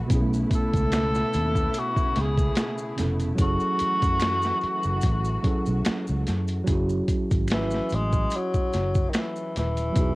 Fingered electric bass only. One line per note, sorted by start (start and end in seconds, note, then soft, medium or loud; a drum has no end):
0.11 0.43 B1 loud
0.74 1.22 C#2 medium
1.35 1.67 D#2 medium
2.17 2.49 C#2 loud
3.00 3.32 F1 medium
3.39 3.57 F#1 loud
3.81 muted fingered electric bass stroke soft
4.03 4.51 F#2 medium
4.63 muted fingered electric bass stroke soft
4.85 5.00 F#1 medium
5.04 5.37 A1 loud
5.45 muted fingered electric bass stroke soft
5.68 5.82 B1 loud
5.87 muted fingered electric bass stroke soft
6.09 6.24 C#2 medium
6.28 6.60 F#2 medium
6.68 7.01 F#1 loud
7.32 7.79 G#1 medium
7.93 8.25 A1 medium
8.74 9.07 F#1 medium
9.57 9.89 D#1 medium
9.97 10.14 E1 medium